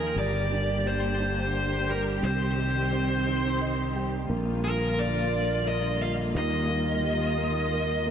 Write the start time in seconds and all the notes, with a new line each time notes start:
Already playing: D#2 D#3 F3 A#3 F4 A#4
0.15 G1 D3 G3 A#3 G4 D5
0.52 D4
0.85 G3 C5
1.20 D4
1.89 G3 A#4
2.23 C2 C3 D#3 C4 C5
2.58 G3
2.93 C4
3.27 D#4
3.61 D#5
3.96 G3 G5
4.29 A#1 D3 G3 A#3 F4
4.63 F4 A#4
4.97 A#3 D5
5.32 F4
5.66 A#3 D#5
6.01 F4 F5
6.34 D#2 D#3 F4 D#5
6.69 A#3
7.04 G4
7.38 A#3
7.72 A#4
8.06 A#3